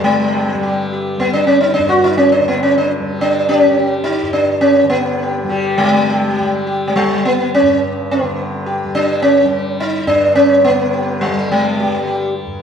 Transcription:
Already playing: tanpura G2 D3 G3
0.04 sitar G#3
0.35 sitar G4
0.51 sitar G3, tanpura G3
0.63 sitar G4
0.93 sitar G4
1.18 tanpura G3, sitar B3
1.33 sitar D4
1.47 sitar C#4
1.61 sitar D#4
1.74 sitar D4
1.79 tanpura G2
1.89 sitar F#4
2.04 sitar D#4
2.17 sitar C#4
2.32 sitar D4
2.40 tanpura D3
2.48 sitar B3
2.63 sitar C#4
2.78 sitar D4
3.00 tanpura G3
3.21 sitar D4 G4
3.49 sitar D4 G4
3.61 tanpura G3, sitar C#4
3.79 sitar G4
4.04 sitar D#4 G4
4.22 tanpura G2
4.33 sitar D4
4.61 sitar C#4
4.83 tanpura D3
4.90 sitar B3 G4
5.23 sitar G4
5.44 tanpura G3
5.49 sitar G3 G4
5.78 tanpura D3, sitar G3
5.89 sitar G#3
6.10 sitar G4
6.38 tanpura G3, sitar G4
6.67 sitar G4
6.88 sitar G#3
6.96 sitar G3
7.01 tanpura G3
7.25 sitar B3
7.54 sitar C#4
7.62 tanpura G2
8.11 sitar B3
8.21 tanpura D3
8.66 sitar G4
8.84 tanpura G3
8.95 sitar D4
9.22 sitar C#4
9.45 tanpura G3
9.80 sitar D#4
10.06 tanpura G2, sitar D4
10.35 sitar C#4
10.64 tanpura D3, sitar B3
10.93 sitar G4
11.21 sitar G3
11.27 tanpura G3
11.52 sitar G#3
11.80 sitar G4
11.86 tanpura G3
11.97 sitar G3
12.07 sitar G4
12.47 tanpura G2

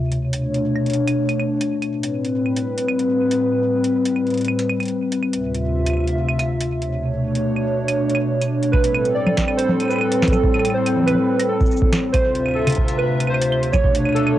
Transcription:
0.01 ambient pad B2 A3 D4 C#5
0.12 closed hi-hat
0.33 closed hi-hat
0.54 closed hi-hat
0.76 claves
0.86 closed hi-hat
0.90 closed hi-hat
0.93 closed hi-hat
1.07 closed hi-hat, claves
1.29 closed hi-hat, claves
1.40 claves
1.61 closed hi-hat, claves
1.82 closed hi-hat, claves
1.93 ambient pad A2 G3 C4 B4
2.03 closed hi-hat
2.25 closed hi-hat
2.46 claves
2.57 closed hi-hat
2.78 closed hi-hat
2.89 claves
2.99 closed hi-hat
3.31 closed hi-hat
3.84 closed hi-hat
4.05 closed hi-hat
4.16 claves
4.27 closed hi-hat
4.30 closed hi-hat
4.34 closed hi-hat
4.37 closed hi-hat
4.41 closed hi-hat
4.44 closed hi-hat, claves
4.59 closed hi-hat
4.69 claves
4.80 closed hi-hat, claves
4.83 closed hi-hat
4.85 closed hi-hat
4.88 closed hi-hat
5.12 closed hi-hat
5.23 claves
5.33 ambient pad D2 C3 F4 E5, closed hi-hat
5.54 closed hi-hat
5.86 closed hi-hat, claves
5.90 claves
5.93 claves
5.97 claves
6.00 claves
6.04 closed hi-hat, claves
6.29 claves
6.39 closed hi-hat, claves
6.61 closed hi-hat
6.82 ambient pad B2 A3 D4 C#5, closed hi-hat
7.35 closed hi-hat
7.56 claves
7.88 closed hi-hat, claves
8.10 closed hi-hat
8.15 claves
8.41 closed hi-hat, claves
8.63 closed hi-hat
8.72 ambient pad A2 G3 C4 A4, synth keys B4, kick, claves
8.84 closed hi-hat
8.95 claves
9.05 closed hi-hat
9.15 synth keys D5
9.27 low conga, claves
9.37 kick, snare, closed hi-hat
9.48 claves
9.57 synth keys C5, closed hi-hat
9.69 low conga
9.80 closed hi-hat, claves
9.83 claves
9.85 claves
9.88 synth keys B4, claves
9.91 claves, shaker
9.93 claves
9.96 claves
9.99 claves
10.01 claves
10.12 closed hi-hat
10.22 snare
10.28 kick, closed hi-hat
10.32 synth keys A4, low conga, claves, shaker
10.44 kick
10.54 claves
10.60 claves
10.65 closed hi-hat, claves
10.70 claves
10.74 synth keys C5
10.86 closed hi-hat, claves
10.97 low conga
11.01 low conga
11.04 synth keys B4, closed hi-hat, low conga
11.08 low conga, claves
11.11 low conga
11.15 low conga
11.40 closed hi-hat, claves
11.49 synth keys A4
11.61 kick, shaker
11.66 shaker
11.71 shaker
11.77 shaker
11.82 kick
11.93 snare, closed hi-hat, claves
12.12 ambient pad D2 C3 F4 E5, synth keys C5, kick, closed hi-hat, claves
12.35 closed hi-hat
12.46 claves
12.49 claves
12.55 synth keys A4, claves
12.59 claves
12.62 claves
12.64 closed hi-hat, low conga, claves
12.67 closed hi-hat, claves
12.72 closed hi-hat
12.75 kick, closed hi-hat
12.88 closed hi-hat
12.98 synth keys B4, claves
13.20 closed hi-hat, claves
13.27 synth keys C5, claves
13.34 claves
13.41 closed hi-hat
13.52 claves
13.63 ambient pad B2 A3 D4 C#5, closed hi-hat
13.72 synth keys C#5, kick, low conga, claves, shaker
13.84 kick
13.95 closed hi-hat
14.05 claves
14.09 claves
14.13 synth keys A4, closed hi-hat, claves
14.16 claves
14.20 claves
14.23 claves
14.27 claves

